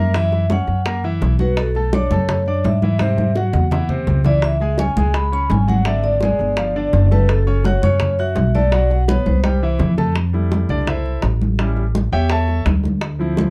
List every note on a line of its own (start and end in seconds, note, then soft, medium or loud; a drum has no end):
0.00 0.62 F#2 medium
0.00 0.11 A#3 medium
0.00 0.11 A#4 medium
0.00 0.12 E5 medium
0.00 0.11 A#5 medium
0.14 0.44 E3 medium
0.14 0.44 E4 medium
0.14 0.44 E5 medium
0.14 0.48 E5 loud
0.14 high bongo medium
0.32 high bongo soft
0.32 high conga soft
0.50 0.79 C#4 medium
0.50 0.80 C#5 medium
0.50 1.01 F#5 loud
0.50 0.80 C#6 medium
0.50 high bongo medium
0.50 high conga medium
0.67 1.18 F#2 medium
0.67 high bongo soft
0.67 high conga soft
0.85 1.00 A#3 medium
0.85 1.01 A#4 medium
0.85 1.01 A#5 medium
0.85 high bongo medium
0.85 high conga soft
1.04 1.33 E3 medium
1.04 1.33 E4 medium
1.04 1.34 E5 medium
1.04 high conga soft
1.21 2.05 B1 medium
1.21 high bongo soft
1.21 low bongo medium
1.21 high conga soft
1.39 1.69 F#3 medium
1.39 1.69 F#4 medium
1.39 1.49 B4 medium
1.39 1.69 F#5 medium
1.39 high bongo soft
1.39 high conga medium
1.57 1.91 A4 medium
1.57 high bongo medium
1.57 high conga soft
1.75 1.90 A3 medium
1.75 1.90 A4 medium
1.75 1.91 A5 medium
1.75 high bongo soft
1.75 high conga soft
1.93 2.08 D4 medium
1.93 2.27 C#5 loud
1.93 2.08 D5 medium
1.93 2.08 D6 medium
1.93 high bongo medium
1.93 high conga loud
2.11 2.61 F#2 medium
2.11 2.41 A3 medium
2.11 2.41 A4 medium
2.11 2.41 A5 medium
2.11 high bongo soft
2.11 high conga medium
2.11 low conga medium
2.29 2.66 C#5 medium
2.29 high bongo medium
2.29 high conga soft
2.29 low conga medium
2.46 2.76 D4 medium
2.46 2.77 D5 medium
2.46 2.77 D6 medium
2.46 high conga soft
2.64 3.48 G#2 medium
2.64 2.98 E5 medium
2.64 high bongo soft
2.64 low bongo medium
2.64 high conga medium
2.82 2.97 E3 medium
2.82 2.97 E4 medium
2.82 2.98 E5 medium
2.82 high bongo soft
2.82 high conga medium
2.99 3.29 C3 medium
2.99 3.30 C4 medium
2.99 3.30 C5 medium
2.99 3.34 E5 medium
2.99 high bongo medium
2.99 high conga medium
3.17 high bongo soft
3.17 high conga medium
3.36 3.65 F#3 medium
3.36 3.65 F#4 medium
3.36 3.66 F#5 medium
3.36 3.87 F#5 loud
3.36 high bongo medium
3.53 4.04 E2 medium
3.53 high bongo loud
3.53 low conga medium
3.71 3.86 E3 medium
3.71 3.87 E4 medium
3.71 3.87 E5 medium
3.71 high bongo loud
3.71 low conga medium
3.89 4.19 C3 medium
3.89 4.19 C4 medium
3.89 4.19 C5 medium
3.89 low conga medium
4.07 4.91 C#2 medium
4.07 low bongo medium
4.07 low conga medium
4.24 4.55 E3 medium
4.24 4.55 E4 medium
4.24 4.34 D5 medium
4.24 4.55 E5 medium
4.24 low bongo medium
4.24 low conga medium
4.42 4.77 E5 loud
4.42 high bongo medium
4.42 high conga soft
4.60 4.76 G#3 medium
4.60 4.76 G#4 medium
4.60 4.76 G#5 medium
4.60 high bongo soft
4.60 high conga soft
4.78 4.93 C#4 medium
4.78 4.94 C#5 medium
4.78 5.13 G#5 loud
4.78 4.94 C#6 medium
4.78 high bongo medium
4.78 high conga medium
4.96 5.47 C#2 medium
4.96 5.26 G#3 medium
4.96 5.26 G#4 medium
4.96 5.26 G#5 medium
4.96 high bongo soft
4.96 high conga medium
4.96 low conga medium
5.14 5.23 B5 medium
5.14 high bongo medium
5.14 high conga soft
5.32 5.62 C#4 medium
5.32 5.62 C#5 medium
5.32 5.50 B5 loud
5.32 5.62 C#6 medium
5.32 high conga soft
5.50 6.34 G#1 loud
5.50 5.69 G#5 medium
5.50 high bongo soft
5.50 low bongo medium
5.50 high conga medium
5.67 5.83 F#3 medium
5.67 5.83 F#4 medium
5.67 5.83 F#5 medium
5.67 5.87 F#5 loud
5.67 high bongo soft
5.67 high conga medium
5.85 6.16 D3 medium
5.85 6.16 D4 medium
5.85 6.16 D5 medium
5.85 6.04 E5 medium
5.85 high bongo medium
5.85 high conga soft
6.03 7.07 D5 loud
6.03 high bongo soft
6.03 high conga soft
6.21 6.52 G#3 medium
6.21 6.52 G#4 medium
6.21 6.52 G#5 medium
6.21 high bongo medium
6.21 high conga medium
6.39 6.90 G1 medium
6.39 high bongo soft
6.39 high conga soft
6.57 6.73 F3 medium
6.57 6.73 F4 medium
6.57 6.73 F5 medium
6.57 high bongo medium
6.57 high conga soft
6.76 7.05 D3 medium
6.76 7.05 D4 medium
6.76 7.05 D5 medium
6.76 high conga soft
6.93 7.77 F#1 loud
6.93 high bongo soft
6.93 low bongo medium
6.93 high conga soft
7.11 7.41 A3 medium
7.11 7.41 A4 medium
7.11 7.28 B4 medium
7.11 7.41 A5 medium
7.11 high bongo soft
7.11 high conga medium
7.29 7.62 A4 medium
7.29 high bongo medium
7.29 high conga soft
7.47 7.62 C#4 medium
7.47 7.62 C#5 medium
7.47 7.62 C#6 medium
7.47 high bongo soft
7.47 high conga soft
7.64 7.80 F#4 medium
7.64 7.73 C#5 medium
7.64 7.80 F#5 medium
7.64 7.80 F#6 medium
7.64 high bongo medium
7.64 high conga medium
7.82 8.33 F#2 medium
7.82 8.12 C#4 medium
7.82 8.20 C#5 loud
7.82 8.13 C#5 medium
7.82 8.13 C#6 medium
7.82 high bongo soft
7.82 high conga medium
7.82 low conga medium
8.00 high bongo medium
8.00 high conga soft
8.00 low conga medium
8.19 8.48 F#4 medium
8.19 8.56 E5 medium
8.19 8.48 F#5 medium
8.19 8.49 F#6 medium
8.19 high conga soft
8.36 9.20 B1 loud
8.36 high bongo soft
8.36 low bongo medium
8.36 high conga medium
8.55 8.69 A3 medium
8.55 8.70 A4 medium
8.55 8.88 D5 loud
8.55 8.70 A5 medium
8.55 high bongo soft
8.55 high conga medium
8.72 9.02 F#3 medium
8.72 9.02 F#4 medium
8.72 9.02 F#5 medium
8.72 high bongo medium
8.72 high conga soft
8.90 9.09 F#5 medium
8.90 high bongo soft
8.90 high conga soft
9.08 9.38 B3 medium
9.08 9.38 B4 medium
9.08 9.26 C#5 medium
9.08 9.38 B5 medium
9.08 high bongo medium
9.08 high conga medium
9.26 9.76 C2 medium
9.26 9.76 C5 medium
9.26 high bongo soft
9.26 high conga medium
9.44 9.59 G3 medium
9.44 9.59 G4 medium
9.44 9.59 G5 medium
9.44 high bongo medium
9.44 high conga medium
9.63 9.92 E3 medium
9.63 9.92 E4 medium
9.63 9.92 E5 medium
9.79 10.63 F2 medium
9.79 high bongo soft
9.79 low bongo medium
9.79 low conga medium
9.98 10.12 A3 medium
9.98 10.12 A4 medium
9.98 10.12 A5 medium
9.98 high bongo soft
9.98 low conga medium
10.16 high bongo medium
10.16 high conga soft
10.33 10.84 G3 soft
10.33 10.85 A3 medium
10.33 10.85 E4 medium
10.33 high conga soft
10.52 high bongo medium
10.52 high conga medium
10.69 11.19 C2 medium
10.69 10.87 D4 medium
10.69 10.87 D5 medium
10.69 high conga soft
10.69 low conga medium
10.87 11.21 E4 medium
10.87 11.21 A4 medium
10.87 11.21 C5 medium
10.87 11.21 E5 medium
10.87 high bongo medium
10.87 high conga soft
10.87 low conga medium
11.06 high conga soft
11.22 12.07 A1 medium
11.22 high bongo medium
11.22 low bongo medium
11.22 high conga soft
11.42 high conga medium
11.59 11.82 G3 medium
11.59 11.83 C#4 soft
11.59 11.83 E4 medium
11.59 high bongo medium
11.59 high conga soft
11.77 high bongo soft
11.77 high conga soft
11.95 high bongo medium
11.95 high conga medium
12.12 12.62 E2 medium
12.12 12.30 G4 medium
12.12 12.30 C#5 medium
12.12 12.30 E5 medium
12.12 12.30 G5 medium
12.12 high conga soft
12.30 12.64 A4 medium
12.30 12.64 C#5 medium
12.30 12.64 E5 medium
12.30 12.64 A5 medium
12.30 high bongo medium
12.30 high conga soft
12.48 high bongo soft
12.48 high conga soft
12.66 13.49 D2 loud
12.66 high bongo medium
12.66 low bongo medium
12.66 high conga medium
12.84 high bongo soft
12.84 high conga medium
13.01 high bongo medium
13.01 high conga soft
13.19 13.50 F3 medium
13.19 13.50 C4 soft
13.19 13.50 E4 medium
13.19 high conga soft
13.37 high bongo medium
13.37 high conga medium